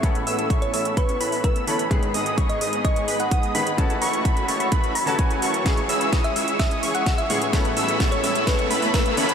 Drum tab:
HH |xxoxxxoxxxooxxox|xxoxxxoxxxoxxxox|xxoxxxoxxxooxxox|xxoxxxoxxxoxxxox|
SD |----------------|----------------|----------------|o---o---o---o---|
BD |o---o---o---o---|o---o---o---o---|o---o---o---o---|o---o---o---o---|

HH |xxoxxxoxxxooxxox|
SD |o---o---o---o---|
BD |o---o---o---o---|